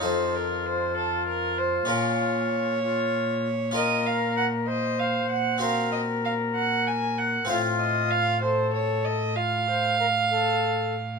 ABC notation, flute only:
X:1
M:12/8
L:1/8
Q:3/8=64
K:Bbphr
V:1 name="Flute"
F8- F F2 z | [K:Fphr] B3 c3 B6 | F3 =A3 F c B A2 z |]